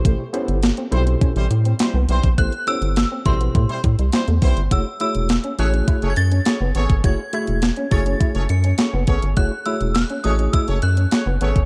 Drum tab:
HH |x-xxxxxxxxxxx-xx|xxxxx-xxxxxxxxox|x-xxxxxxxxxxx-xx|x-xxxxxxxxxxx-xx|
CP |----x-------x---|----x-------x---|----x-------x---|----x-------x---|
SD |----o-------o---|----o-------o---|----o-------o---|----o-------o---|
BD |o-------o------o|o-----o-o-o---o-|o-------o------o|o-----o-o-----o-|

HH |x-xxxxxxxxxxx-xx|
CP |----x-------x---|
SD |----o-------o---|
BD |o-------o------o|